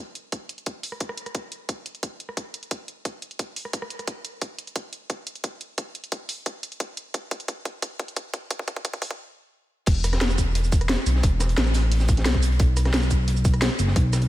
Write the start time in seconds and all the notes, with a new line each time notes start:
0.15 closed hi-hat
0.32 kick, closed hi-hat
0.49 closed hi-hat
0.58 closed hi-hat
0.66 kick, closed hi-hat
0.83 open hi-hat
0.92 cross-stick
1.00 kick, closed hi-hat
1.09 cross-stick
1.17 closed hi-hat
1.26 cross-stick, closed hi-hat
1.35 kick, closed hi-hat
1.52 closed hi-hat
1.69 kick, closed hi-hat
1.86 closed hi-hat
1.95 closed hi-hat
2.03 kick, closed hi-hat
2.20 closed hi-hat
2.29 cross-stick
2.37 kick, closed hi-hat
2.54 closed hi-hat
2.63 closed hi-hat
2.71 kick, closed hi-hat
2.88 closed hi-hat
3.05 kick, closed hi-hat
3.22 closed hi-hat
3.31 closed hi-hat
3.39 kick, closed hi-hat
3.56 open hi-hat
3.65 cross-stick
3.73 kick, closed hi-hat
3.82 cross-stick
3.90 closed hi-hat
3.99 cross-stick, closed hi-hat
4.07 kick, closed hi-hat
4.25 closed hi-hat
4.42 kick, closed hi-hat
4.59 closed hi-hat
4.67 closed hi-hat
4.76 kick, closed hi-hat
4.93 closed hi-hat
5.10 kick, closed hi-hat
5.27 closed hi-hat
5.35 closed hi-hat
5.44 kick, closed hi-hat
5.61 closed hi-hat
5.78 kick, closed hi-hat
5.95 closed hi-hat
6.04 closed hi-hat
6.12 kick, closed hi-hat
6.29 open hi-hat
6.46 kick, closed hi-hat
6.63 closed hi-hat
6.72 closed hi-hat
6.80 kick, closed hi-hat
6.97 closed hi-hat
7.14 kick, closed hi-hat
7.31 kick, closed hi-hat
7.40 closed hi-hat
7.48 kick, closed hi-hat
7.65 kick, closed hi-hat
7.82 kick, closed hi-hat
7.99 kick, closed hi-hat
8.08 closed hi-hat
8.16 kick, closed hi-hat
8.34 kick, closed hi-hat
8.51 kick, closed hi-hat
8.59 kick
8.68 kick, closed hi-hat
8.76 kick, closed hi-hat
8.85 kick, closed hi-hat
8.93 kick, closed hi-hat
9.02 kick, open hi-hat
9.11 kick, closed hi-hat
9.86 E1, kick, closed hi-hat, crash
10.04 cross-stick, closed hi-hat, shaker
10.13 cross-stick, snare, closed hi-hat
10.21 snare, closed hi-hat
10.30 cross-stick, closed hi-hat, shaker
10.38 kick, closed hi-hat, shaker
10.55 closed hi-hat
10.64 closed hi-hat, shaker
10.72 kick, closed hi-hat, shaker
10.81 cross-stick, closed hi-hat
10.89 snare, closed hi-hat
11.06 B1, closed hi-hat, shaker
11.16 snare
11.23 E1, kick, closed hi-hat
11.39 cross-stick, snare, closed hi-hat, shaker
11.49 closed hi-hat
11.57 A1, snare, closed hi-hat
11.66 cross-stick, snare, shaker
11.74 snare, closed hi-hat, open hi-hat, shaker
11.91 closed hi-hat, open hi-hat
12.00 snare, shaker
12.09 kick, closed hi-hat, shaker
12.17 snare, closed hi-hat
12.26 B1, snare, closed hi-hat
12.34 kick, snare
12.43 closed hi-hat, shaker
12.52 closed hi-hat
12.59 B1, kick, closed hi-hat
12.77 cross-stick, closed hi-hat, shaker
12.85 cross-stick, snare, closed hi-hat
12.94 snare, closed hi-hat
13.02 cross-stick, closed hi-hat, shaker
13.10 kick, closed hi-hat, shaker
13.28 closed hi-hat
13.36 closed hi-hat, shaker
13.45 kick, closed hi-hat, shaker
13.54 cross-stick, closed hi-hat
13.61 snare, closed hi-hat
13.79 F#1, closed hi-hat, shaker
13.87 snare
13.96 B1, kick, closed hi-hat
14.13 cross-stick, snare, closed hi-hat, shaker
14.21 closed hi-hat